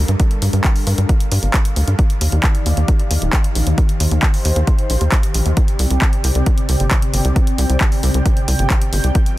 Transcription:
0.00 1.95 G3 medium
0.00 1.95 D4 medium
0.00 1.95 A4 medium
0.00 1.95 A#4 medium
0.00 5.53 F5 medium
0.08 0.15 G2 medium
0.08 closed hi-hat medium
0.20 kick loud
0.20 closed hi-hat medium
0.31 closed hi-hat medium
0.42 0.49 G2 medium
0.42 open hi-hat loud
0.53 0.60 G2 medium
0.53 closed hi-hat medium
0.64 kick loud
0.64 clap loud
0.64 closed hi-hat soft
0.76 open hi-hat medium
0.87 0.94 G2 loud
0.87 open hi-hat loud
0.98 1.05 G2 medium
0.98 closed hi-hat medium
1.09 kick loud
1.09 closed hi-hat medium
1.20 closed hi-hat medium
1.31 1.39 G2 loud
1.31 open hi-hat loud
1.43 1.50 G1 medium
1.43 closed hi-hat medium
1.54 kick loud
1.54 clap loud
1.54 closed hi-hat medium
1.65 closed hi-hat medium
1.76 1.83 D2 loud
1.76 open hi-hat loud
1.87 1.95 G2 medium
1.87 closed hi-hat medium
1.99 5.53 D#3 medium
1.99 5.53 D#4 medium
1.99 9.11 G4 medium
1.99 3.76 D5 medium
1.99 kick loud
1.99 closed hi-hat medium
2.10 closed hi-hat soft
2.21 2.28 D#2 medium
2.21 open hi-hat loud
2.32 2.39 D#2 medium
2.32 closed hi-hat medium
2.44 kick loud
2.44 clap loud
2.44 closed hi-hat soft
2.55 closed hi-hat soft
2.66 2.73 D#2 loud
2.66 open hi-hat loud
2.77 2.84 D#2 medium
2.77 closed hi-hat soft
2.88 kick loud
2.88 closed hi-hat medium
2.99 closed hi-hat soft
3.11 3.18 D#2 medium
3.11 open hi-hat loud
3.22 3.29 D#1 medium
3.22 closed hi-hat medium
3.33 kick loud
3.33 clap loud
3.33 closed hi-hat medium
3.44 closed hi-hat medium
3.55 3.62 A#1 medium
3.55 open hi-hat loud
3.67 3.74 D#2 medium
3.67 closed hi-hat medium
3.78 5.55 C5 medium
3.78 kick loud
3.78 closed hi-hat medium
3.89 closed hi-hat soft
4.00 4.07 D#2 loud
4.00 open hi-hat loud
4.11 4.18 D#2 medium
4.11 closed hi-hat soft
4.23 kick loud
4.23 clap loud
4.23 closed hi-hat soft
4.34 open hi-hat medium
4.45 4.52 D#2 loud
4.45 open hi-hat loud
4.56 4.63 D#2 medium
4.56 closed hi-hat soft
4.67 kick loud
4.67 closed hi-hat medium
4.79 closed hi-hat soft
4.90 4.97 A#1 medium
4.90 open hi-hat loud
5.01 5.08 D#2 medium
5.01 closed hi-hat soft
5.12 kick loud
5.12 clap loud
5.12 closed hi-hat medium
5.23 closed hi-hat medium
5.34 5.42 A#1 medium
5.34 open hi-hat loud
5.46 5.53 D#2 medium
5.46 closed hi-hat soft
5.57 9.12 C3 medium
5.57 9.12 C4 medium
5.57 9.12 D5 medium
5.57 9.38 G5 medium
5.57 kick loud
5.57 closed hi-hat medium
5.68 closed hi-hat soft
5.79 5.86 C2 loud
5.79 open hi-hat loud
5.91 5.98 C2 medium
5.91 closed hi-hat soft
6.02 kick loud
6.02 clap loud
6.02 closed hi-hat soft
6.13 closed hi-hat medium
6.24 6.31 C2 loud
6.24 open hi-hat loud
6.35 6.42 C2 medium
6.35 closed hi-hat soft
6.46 kick loud
6.46 closed hi-hat medium
6.58 closed hi-hat medium
6.69 6.76 C2 loud
6.69 open hi-hat medium
6.80 6.87 G1 medium
6.80 closed hi-hat soft
6.91 kick loud
6.91 clap loud
6.91 closed hi-hat medium
7.02 closed hi-hat medium
7.14 7.21 G1 medium
7.14 open hi-hat loud
7.25 7.32 C2 medium
7.25 closed hi-hat medium
7.36 kick loud
7.36 closed hi-hat medium
7.47 closed hi-hat medium
7.58 7.65 C2 medium
7.58 open hi-hat loud
7.70 7.77 C2 medium
7.70 closed hi-hat medium
7.81 kick loud
7.81 clap loud
7.81 closed hi-hat soft
7.92 open hi-hat medium
8.03 8.10 C2 loud
8.03 open hi-hat loud
8.14 8.21 C2 medium
8.14 closed hi-hat soft
8.26 kick loud
8.26 closed hi-hat medium
8.37 closed hi-hat medium
8.48 8.55 C2 medium
8.48 open hi-hat loud
8.59 8.66 G1 medium
8.59 closed hi-hat medium
8.70 kick loud
8.70 clap loud
8.70 closed hi-hat medium
8.82 closed hi-hat medium
8.93 9.00 G1 loud
8.93 open hi-hat loud
9.04 9.11 C2 medium
9.04 closed hi-hat medium
9.15 9.38 F3 medium
9.15 9.38 C4 medium
9.15 9.38 A4 medium
9.15 9.38 D#5 medium
9.15 kick loud
9.15 closed hi-hat medium
9.26 closed hi-hat medium

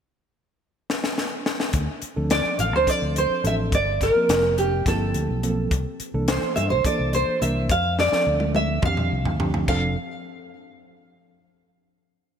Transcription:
0.90 snare medium
1.04 snare medium
1.18 snare medium
1.46 snare medium
1.60 snare medium
1.73 1.87 D2 medium
1.73 kick medium
1.73 closed hi-hat medium
2.02 muted fingered electric bass stroke soft
2.02 closed hi-hat soft
2.16 2.43 D2 medium
2.16 2.83 F3 medium
2.16 2.83 C4 medium
2.16 2.83 D4 medium
2.16 2.83 A4 medium
2.30 2.59 D5 medium
2.30 snare medium
2.30 closed hi-hat medium
2.45 muted fingered electric bass stroke soft
2.59 2.73 A1 medium
2.59 2.73 F5 medium
2.59 closed hi-hat medium
2.73 2.86 D2 medium
2.73 2.90 C5 medium
2.87 3.41 F3 medium
2.87 3.41 C4 medium
2.87 3.41 D4 medium
2.87 3.41 A4 medium
2.87 3.18 D5 loud
2.87 muted fingered electric bass stroke soft
2.87 kick medium
2.87 closed hi-hat medium
3.02 3.28 D2 medium
3.16 3.46 C5 medium
3.16 closed hi-hat medium
3.30 muted fingered electric bass stroke soft
3.44 3.70 A1 medium
3.44 3.73 F3 medium
3.44 3.73 C4 medium
3.44 3.73 D4 medium
3.44 3.73 A4 medium
3.44 3.54 E5 medium
3.44 closed hi-hat medium
3.72 4.11 G1 medium
3.72 4.03 D5 medium
3.72 kick medium
3.72 closed hi-hat medium
4.01 4.58 A#4 medium
4.01 kick medium
4.01 snare soft
4.01 closed hi-hat soft
4.15 4.82 F3 medium
4.15 4.82 A#3 medium
4.15 4.82 C4 medium
4.15 4.82 A#4 medium
4.15 muted fingered electric bass stroke soft
4.29 4.82 F1 medium
4.29 snare medium
4.29 closed hi-hat medium
4.58 4.84 G4 medium
4.58 closed hi-hat medium
4.86 5.12 G1 medium
4.86 5.40 F3 medium
4.86 5.40 A#3 medium
4.86 5.40 C4 medium
4.86 5.40 E4 medium
4.86 5.47 A4 medium
4.86 kick medium
4.86 snare soft
4.86 closed hi-hat medium
5.14 5.27 D2 medium
5.14 closed hi-hat soft
5.29 5.67 B1 medium
5.43 5.72 F3 medium
5.43 5.71 A#3 medium
5.43 5.72 C4 medium
5.43 5.72 A4 medium
5.43 closed hi-hat medium
5.71 5.84 C2 loud
5.71 kick medium
5.71 closed hi-hat medium
6.00 muted fingered electric bass stroke soft
6.00 closed hi-hat soft
6.14 6.39 C2 medium
6.14 6.80 E3 medium
6.14 6.81 A#3 medium
6.14 6.80 D4 medium
6.14 6.81 A4 medium
6.28 6.55 C5 medium
6.28 snare loud
6.28 closed hi-hat medium
6.43 muted fingered electric bass stroke soft
6.56 6.72 G2 loud
6.56 6.70 E5 medium
6.56 closed hi-hat medium
6.70 6.84 C2 medium
6.70 6.85 C5 medium
6.85 7.38 E3 medium
6.85 7.38 A#3 medium
6.85 7.38 D4 medium
6.85 7.38 A4 medium
6.85 7.14 D5 medium
6.85 muted fingered electric bass stroke soft
6.85 kick medium
6.85 closed hi-hat medium
6.99 7.25 C2 medium
7.13 7.40 C5 medium
7.13 closed hi-hat medium
7.28 muted fingered electric bass stroke soft
7.41 7.67 C2 medium
7.41 7.70 E3 medium
7.41 7.70 A#3 medium
7.41 7.70 D4 medium
7.41 7.70 A#4 medium
7.41 7.71 E5 medium
7.41 closed hi-hat medium
7.69 8.08 F2 medium
7.69 7.99 F5 medium
7.69 kick medium
7.69 closed hi-hat medium
7.99 8.55 D5 medium
7.99 snare medium
8.12 8.79 F3 medium
8.12 8.79 C4 medium
8.12 8.79 D4 medium
8.12 8.79 A4 medium
8.12 muted fingered electric bass stroke soft
8.12 snare soft
8.27 8.79 D2 medium
8.40 high tom medium
8.55 8.84 E5 medium
8.55 high tom medium
8.82 9.09 F2 medium
8.82 9.36 F3 medium
8.82 9.36 C4 medium
8.82 9.36 D4 medium
8.82 9.36 G4 medium
8.82 9.44 F5 medium
8.82 kick loud
8.82 mid tom medium
8.97 mid tom medium
9.12 9.24 C2 medium
9.25 9.64 D2 medium
9.25 floor tom medium
9.39 9.67 F3 medium
9.39 9.67 C4 medium
9.39 9.67 D4 medium
9.39 9.68 G4 medium
9.39 floor tom medium
9.54 floor tom medium
9.68 9.95 F1 medium
9.68 9.95 F3 medium
9.68 9.95 C4 medium
9.68 9.95 D4 medium
9.68 9.95 A4 medium
9.68 9.95 F5 medium
9.68 kick medium
9.68 crash medium

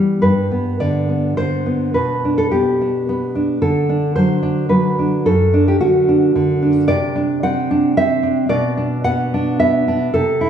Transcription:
0.00 0.19 E3 soft
0.00 0.22 G3 soft
0.00 0.22 B3 soft
0.22 1.92 G2 soft
0.22 0.78 B4 medium
0.51 1.08 B3 soft
0.80 1.36 D3 soft
0.80 1.36 D5 medium
1.09 1.65 B3 soft
1.37 1.96 D3 soft
1.37 1.93 C5 medium
1.66 1.95 B3 soft
1.94 3.58 B2 soft
1.94 2.36 B4 medium
2.25 2.80 D4 soft
2.38 2.51 A4 medium
2.51 3.08 B3 soft
2.51 3.58 G4 medium
2.81 3.34 D4 soft
3.09 3.63 B3 soft
3.35 3.62 D4 soft
3.62 5.23 D3 soft
3.62 4.15 A4 medium
3.89 4.41 D4 soft
4.16 4.69 F#3 soft
4.16 4.69 C5 medium
4.43 4.98 D4 soft
4.69 5.26 F#3 soft
4.69 5.23 B4 medium
4.99 5.27 D4 soft
5.26 6.84 F#2 medium
5.26 5.66 A4 medium
5.54 6.07 D4 medium
5.68 5.80 G4 medium
5.81 6.34 D3 soft
5.81 6.84 F#4 medium
6.09 6.61 D4 medium
6.35 6.89 D3 soft
6.62 6.89 D4 soft
6.88 8.47 C3 medium
6.88 7.40 D5 medium
7.16 7.70 D4 medium
7.43 7.97 C4 medium
7.43 7.96 F#5 medium
7.71 8.22 D4 medium
7.97 8.51 C4 medium
7.97 8.48 E5 medium
8.23 8.50 D4 medium
8.49 10.10 B2 medium
8.49 9.03 D5 medium
8.77 9.33 D4 medium
9.04 9.60 B3 medium
9.04 9.58 F#5 loud
9.34 9.87 D4 medium
9.60 10.13 B3 medium
9.60 10.11 E5 medium
9.88 10.14 D4 medium
10.14 10.50 C3 medium
10.14 10.50 A4 medium
10.41 10.50 E4 medium

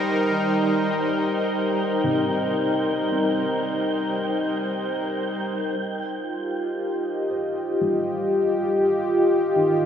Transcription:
0.00 0.47 G3 medium
0.00 5.78 G3 medium
0.00 8.05 D#4 medium
0.00 7.28 A#4 medium
0.00 8.31 C5 medium
0.00 5.81 G5 medium
0.30 2.21 D#3 medium
2.04 4.91 C3 medium
2.25 3.29 D#4 medium
3.11 5.96 C4 medium
6.15 9.86 F4 medium
6.37 9.86 G4 medium
6.89 9.86 D#5 medium
7.30 9.86 C5 soft
7.81 9.73 G3 medium
9.56 9.86 D#3 medium

